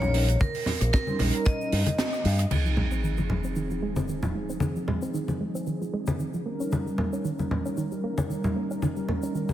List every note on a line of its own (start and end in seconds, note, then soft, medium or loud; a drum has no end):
0.00 0.35 A#1 medium
0.00 0.11 G3 loud
0.00 0.11 C#4 medium
0.00 0.11 D#4 medium
0.00 0.11 A#4 loud
0.00 0.37 C#5 loud
0.00 low conga medium
0.00 shaker soft
0.14 0.23 G3 medium
0.14 0.24 C#4 medium
0.14 0.24 D#4 medium
0.14 0.24 A#4 medium
0.14 open hi-hat loud
0.28 closed hi-hat medium
0.28 shaker medium
0.40 0.90 A#4 loud
0.40 kick loud
0.40 closed hi-hat medium
0.40 high conga medium
0.40 shaker medium
0.54 open hi-hat medium
0.54 shaker soft
0.66 snare medium
0.66 open hi-hat loud
0.66 low conga medium
0.81 0.90 A#1 medium
0.81 cross-stick medium
0.81 closed hi-hat medium
0.81 shaker medium
0.93 1.42 A#4 loud
0.93 kick loud
0.93 snare loud
0.93 closed hi-hat medium
0.93 shaker medium
1.07 1.16 G3 medium
1.07 1.17 C#4 medium
1.07 1.17 D#4 medium
1.07 1.17 C5 loud
1.07 high conga medium
1.07 shaker soft
1.19 1.30 A#1 medium
1.19 1.83 G3 medium
1.19 1.83 C#4 medium
1.19 1.83 D#4 medium
1.19 1.84 A#4 loud
1.19 open hi-hat loud
1.19 low conga medium
1.33 closed hi-hat medium
1.33 shaker medium
1.45 2.21 D#5 loud
1.45 kick loud
1.45 closed hi-hat medium
1.45 shaker medium
1.61 shaker soft
1.72 1.82 G2 medium
1.72 open hi-hat loud
1.86 closed hi-hat medium
1.86 high conga medium
1.86 shaker medium
1.98 snare loud
1.98 closed hi-hat medium
1.98 shaker medium
2.13 cross-stick medium
2.13 shaker soft
2.25 2.44 G2 loud
2.25 open hi-hat loud
2.39 cross-stick medium
2.39 closed hi-hat medium
2.39 shaker medium
2.50 2.60 D#3 loud
2.50 6.42 F3 medium
2.50 6.43 C4 medium
2.50 6.43 D#4 medium
2.50 6.43 G#4 medium
2.50 crash medium
2.50 sub drop medium
2.50 high conga medium
2.50 shaker medium
2.65 2.70 F3 medium
2.65 shaker soft
2.77 2.86 G#3 loud
2.77 low conga medium
2.91 3.03 C4 medium
2.91 shaker medium
3.04 3.13 D#3 medium
3.04 shaker medium
3.17 3.26 F3 medium
3.17 high conga medium
3.17 shaker soft
3.30 3.44 G#3 medium
3.30 low conga medium
3.44 3.56 C4 medium
3.44 shaker medium
3.56 3.66 D#3 medium
3.56 shaker medium
3.70 3.78 F3 medium
3.70 shaker soft
3.82 3.92 G#3 medium
3.96 4.08 C4 medium
3.96 high conga medium
3.96 shaker medium
4.08 4.14 D#3 medium
4.08 shaker medium
4.23 4.35 F3 medium
4.23 low conga medium
4.23 shaker soft
4.35 4.49 G#3 medium
4.50 4.61 C4 medium
4.50 shaker medium
4.60 4.71 D#3 medium
4.60 high conga medium
4.60 shaker medium
4.76 4.81 F3 medium
4.76 shaker soft
4.88 4.97 G#3 loud
4.88 low conga medium
5.02 5.14 C4 medium
5.02 shaker medium
5.14 5.23 D#3 medium
5.14 shaker medium
5.28 5.36 F3 medium
5.28 high conga medium
5.28 shaker soft
5.41 5.54 G#3 medium
5.55 5.66 C4 medium
5.55 shaker medium
5.66 5.76 D#3 medium
5.66 shaker medium
5.81 5.89 F3 medium
5.81 shaker soft
5.93 6.03 G#3 medium
6.07 6.19 C4 medium
6.07 high conga medium
6.07 shaker medium
6.19 6.25 D#3 medium
6.19 shaker medium
6.34 6.45 F3 medium
6.34 shaker soft
6.45 9.53 G3 medium
6.45 6.59 A#3 medium
6.45 9.53 C#4 medium
6.45 9.53 D#4 medium
6.45 9.53 A#4 medium
6.60 6.72 C#4 medium
6.60 shaker medium
6.72 6.81 D#3 medium
6.72 high conga medium
6.72 shaker medium
6.86 6.91 G3 medium
6.86 shaker soft
6.98 7.08 A#3 loud
6.98 low conga medium
7.13 7.24 C#4 medium
7.13 shaker medium
7.25 7.34 D#3 loud
7.25 shaker medium
7.39 7.47 G3 medium
7.39 high conga medium
7.39 shaker soft
7.51 7.65 A#3 medium
7.51 low conga medium
7.66 7.77 C#4 medium
7.66 shaker medium
7.77 7.87 D#3 medium
7.77 shaker medium
7.92 7.99 G3 medium
7.92 shaker soft
8.04 8.13 A#3 medium
8.18 8.30 C#4 medium
8.18 high conga medium
8.18 shaker medium
8.30 8.35 D#3 medium
8.30 shaker medium
8.44 8.56 G3 medium
8.44 low conga medium
8.44 shaker soft
8.56 8.70 A#3 medium
8.71 8.82 C#4 medium
8.71 shaker medium
8.82 8.92 D#3 medium
8.82 high conga medium
8.82 shaker medium
8.96 9.02 G3 medium
8.96 shaker soft
9.08 9.18 A#3 loud
9.08 low conga medium
9.23 9.35 C#4 medium
9.23 shaker medium
9.35 9.44 D#3 medium
9.35 shaker medium
9.49 9.53 G3 medium
9.49 high conga medium
9.49 shaker soft